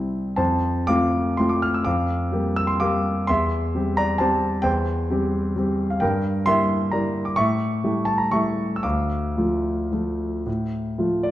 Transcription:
0.00 0.41 C2 soft
0.00 0.42 G3 soft
0.00 0.42 C4 soft
0.00 0.41 E4 soft
0.36 0.87 F2 medium
0.36 0.84 C5 medium
0.36 0.87 A5 medium
0.87 1.35 A3 soft
0.87 1.34 C4 soft
0.87 1.35 F4 soft
0.87 1.35 F5 medium
0.87 1.38 D6 medium
1.37 1.82 A3 soft
1.37 1.82 C4 soft
1.37 1.82 F4 soft
1.37 1.50 C6 medium
1.49 1.62 D6 medium
1.62 1.74 F6 medium
1.74 1.86 E6 medium
1.85 2.31 F2 medium
1.85 2.53 F5 medium
1.85 2.56 D6 medium
2.32 2.77 G3 soft
2.32 2.78 A#3 soft
2.32 2.78 G4 medium
2.56 2.69 E6 medium
2.67 2.80 C6 medium
2.80 3.24 G3 soft
2.80 3.25 A#3 soft
2.80 3.25 G4 soft
2.80 3.25 F5 medium
2.80 3.28 D6 medium
3.27 3.74 E2 medium
3.27 3.95 E5 medium
3.27 3.98 C6 medium
3.75 4.17 G3 soft
3.75 4.17 C4 soft
3.75 4.18 G4 medium
3.97 4.20 D5 medium
3.97 4.21 A#5 medium
4.18 4.62 G3 soft
4.18 4.62 C4 soft
4.18 4.62 G4 medium
4.18 4.62 C5 medium
4.18 4.65 A5 medium
4.62 5.09 E2 medium
4.62 5.86 C5 medium
4.62 5.89 G5 medium
5.10 5.53 G3 soft
5.10 5.53 C4 medium
5.10 5.53 G4 medium
5.56 5.97 G3 soft
5.56 5.98 C4 soft
5.56 5.98 G4 soft
5.90 6.02 F5 medium
6.00 6.45 G2 medium
6.00 6.43 A#4 medium
6.00 6.46 G5 medium
6.46 6.88 G3 soft
6.46 6.88 A#3 soft
6.46 6.88 E4 medium
6.46 6.89 E5 medium
6.46 6.92 C6 loud
6.91 7.34 G3 soft
6.91 7.34 A#3 soft
6.91 7.35 E4 soft
6.91 7.25 D5 medium
6.91 7.26 A#5 medium
7.25 7.37 D6 medium
7.36 7.82 A2 medium
7.36 8.03 E5 medium
7.36 8.07 C#6 medium
7.84 8.29 G3 soft
7.84 8.29 A3 soft
7.84 8.29 E4 soft
8.05 8.19 A5 medium
8.18 8.32 A#5 medium
8.31 8.80 G3 soft
8.31 8.80 A3 soft
8.31 8.80 E4 soft
8.31 8.73 E5 medium
8.31 8.76 C#6 medium
8.76 8.84 E6 medium
8.83 9.37 D2 medium
8.83 11.31 F5 medium
8.83 11.31 D6 medium
9.37 9.88 F3 soft
9.37 9.89 A3 soft
9.37 9.89 F4 soft
9.91 10.42 F3 soft
9.91 10.42 A3 soft
9.91 10.43 F4 soft
10.46 10.97 A2 soft
10.98 11.31 F3 soft
10.98 11.31 A3 soft
10.98 11.31 F4 soft
11.23 11.31 D5 medium

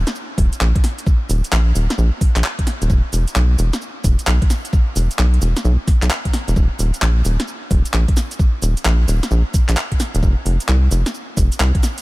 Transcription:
0.07 snare medium
0.07 closed hi-hat medium
0.07 shaker soft
0.15 shaker soft
0.38 0.50 D#1 loud
0.38 kick loud
0.38 open hi-hat loud
0.38 shaker medium
0.53 closed hi-hat medium
0.53 shaker soft
0.61 0.73 A#1 loud
0.61 clap loud
0.61 shaker soft
0.75 kick loud
0.75 closed hi-hat medium
0.84 snare medium
0.84 open hi-hat loud
0.84 shaker medium
0.99 closed hi-hat medium
0.99 shaker soft
1.07 kick loud
1.07 shaker soft
1.29 1.42 D#1 loud
1.29 open hi-hat loud
1.29 shaker medium
1.44 closed hi-hat medium
1.44 shaker soft
1.52 1.73 A#1 medium
1.52 clap loud
1.52 shaker soft
1.75 1.88 D#1 loud
1.75 open hi-hat loud
1.75 shaker medium
1.90 snare medium
1.90 closed hi-hat medium
1.90 shaker soft
1.98 2.10 A#1 loud
1.98 shaker soft
2.21 kick loud
2.21 open hi-hat loud
2.21 shaker medium
2.36 2.43 A#1 loud
2.36 clap medium
2.36 closed hi-hat medium
2.36 shaker soft
2.44 clap loud
2.44 shaker soft
2.59 kick medium
2.59 closed hi-hat soft
2.67 snare medium
2.67 open hi-hat loud
2.67 shaker medium
2.82 2.88 D#1 loud
2.82 closed hi-hat medium
2.82 shaker soft
2.90 3.02 E1 loud
2.90 kick loud
2.90 shaker soft
3.13 3.25 E1 loud
3.13 open hi-hat loud
3.13 shaker medium
3.28 closed hi-hat medium
3.28 shaker soft
3.36 3.56 B1 medium
3.36 clap loud
3.36 shaker soft
3.59 3.71 E1 loud
3.59 open hi-hat loud
3.59 shaker medium
3.73 snare medium
3.73 closed hi-hat medium
3.73 shaker soft
3.81 shaker soft
4.04 4.17 E1 loud
4.04 kick loud
4.04 open hi-hat loud
4.04 shaker medium
4.19 closed hi-hat medium
4.19 shaker soft
4.27 4.39 B1 medium
4.27 clap loud
4.27 shaker soft
4.42 kick loud
4.42 closed hi-hat medium
4.50 snare medium
4.50 open hi-hat loud
4.50 shaker medium
4.65 closed hi-hat medium
4.65 shaker soft
4.73 kick loud
4.73 shaker soft
4.96 5.08 E1 medium
4.96 open hi-hat loud
4.96 shaker medium
5.11 closed hi-hat medium
5.11 shaker soft
5.19 5.39 B1 medium
5.19 clap loud
5.19 shaker soft
5.34 closed hi-hat soft
5.42 5.54 E1 loud
5.42 open hi-hat loud
5.42 shaker medium
5.57 snare medium
5.57 closed hi-hat medium
5.57 shaker soft
5.65 5.77 B1 loud
5.65 shaker soft
5.88 kick loud
5.88 snare soft
5.88 open hi-hat loud
5.88 shaker medium
6.02 6.09 B1 loud
6.02 clap medium
6.02 closed hi-hat medium
6.02 shaker soft
6.11 clap loud
6.11 shaker soft
6.25 kick medium
6.25 closed hi-hat medium
6.33 snare medium
6.33 open hi-hat medium
6.33 shaker medium
6.48 6.55 E1 loud
6.48 closed hi-hat medium
6.48 shaker soft
6.56 6.69 D#1 loud
6.56 kick loud
6.56 shaker soft
6.79 6.91 D#1 medium
6.79 open hi-hat loud
6.79 shaker medium
6.94 closed hi-hat medium
6.94 shaker soft
7.02 7.22 A#1 medium
7.02 clap loud
7.02 shaker soft
7.25 7.37 D#1 loud
7.25 open hi-hat loud
7.25 shaker medium
7.40 snare medium
7.40 closed hi-hat medium
7.40 shaker soft
7.48 shaker soft
7.71 7.83 D#1 loud
7.71 kick loud
7.71 open hi-hat loud
7.71 shaker medium
7.85 closed hi-hat medium
7.85 shaker soft
7.94 8.06 A#1 loud
7.94 clap loud
7.94 shaker soft
8.08 kick loud
8.08 closed hi-hat medium
8.17 snare medium
8.17 open hi-hat loud
8.17 shaker medium
8.31 closed hi-hat medium
8.31 shaker soft
8.39 kick loud
8.39 shaker soft
8.62 8.75 D#1 loud
8.62 open hi-hat loud
8.62 shaker medium
8.77 closed hi-hat medium
8.77 shaker soft
8.85 9.05 A#1 medium
8.85 clap loud
8.85 shaker soft
9.08 9.20 D#1 loud
9.08 open hi-hat loud
9.08 shaker medium
9.23 snare medium
9.23 closed hi-hat medium
9.23 shaker soft
9.31 9.43 A#1 loud
9.31 shaker soft
9.54 kick loud
9.54 open hi-hat loud
9.54 shaker medium
9.69 9.75 A#1 loud
9.69 clap medium
9.69 closed hi-hat medium
9.69 shaker soft
9.77 clap loud
9.77 shaker soft
9.92 kick medium
9.92 closed hi-hat medium
10.00 snare soft
10.00 open hi-hat loud
10.00 shaker medium
10.15 10.21 D#1 loud
10.15 closed hi-hat medium
10.15 shaker soft
10.23 10.35 F1 loud
10.23 kick loud
10.23 shaker soft
10.45 10.58 F1 loud
10.45 open hi-hat loud
10.45 shaker medium
10.60 closed hi-hat medium
10.60 shaker soft
10.68 10.89 C2 medium
10.68 clap loud
10.68 shaker soft
10.91 11.04 F1 medium
10.91 open hi-hat loud
10.91 shaker medium
11.06 snare medium
11.06 closed hi-hat medium
11.06 shaker soft
11.14 shaker soft
11.37 11.49 F1 loud
11.37 kick loud
11.37 open hi-hat loud
11.37 shaker medium
11.52 closed hi-hat medium
11.52 shaker soft
11.60 11.72 C2 medium
11.60 clap loud
11.60 shaker soft
11.75 kick loud
11.75 closed hi-hat medium
11.83 snare medium
11.83 open hi-hat loud
11.83 shaker medium
11.98 closed hi-hat medium
11.98 shaker soft

